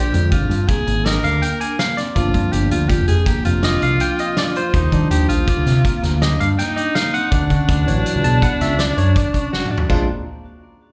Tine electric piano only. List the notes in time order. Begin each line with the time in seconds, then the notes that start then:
Already playing: D5
0.12 D3 G#3 C4
1.07 D#5
1.24 F5
1.42 G5
1.61 G#5
1.79 F5
1.97 D5
2.15 F3 A#3 D4
3.64 D#5
3.83 F5
4.01 G5
4.20 D#5
4.38 D5
4.57 C5
4.92 F3 G3 D4
6.22 D#5
6.40 F5
6.59 G5
6.76 D#5
6.95 F5
7.14 F#5
7.86 E3 F#3 C#5
8.24 A5
8.43 F#5
8.61 E5
8.80 D5
8.98 C#5
9.16 D5
9.89 G#3 C4 D4 F4